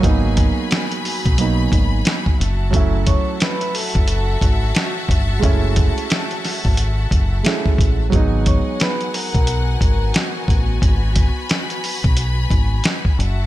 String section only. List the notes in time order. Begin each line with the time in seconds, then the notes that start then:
Already playing: F#4 G#4 G#5
0.05 B5
2.40 F#4 E5 F#5 A5
8.12 B3 F#4 F#5 G#5
10.83 B5
13.19 F#4 E5 F#5 A5